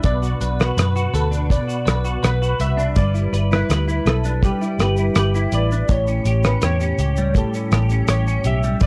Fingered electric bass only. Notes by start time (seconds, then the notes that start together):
0.04 B1
0.40 B1
0.77 F#2
1.14 D2
1.87 B1
2.23 B1
2.60 C2
2.96 G1
3.33 G1
3.69 D2
4.05 B1
4.79 G1
5.16 G1
5.52 A1
5.89 A1
6.25 A1
6.62 E2
6.98 C#2
7.71 A1
8.08 A1
8.44 B1
8.81 G1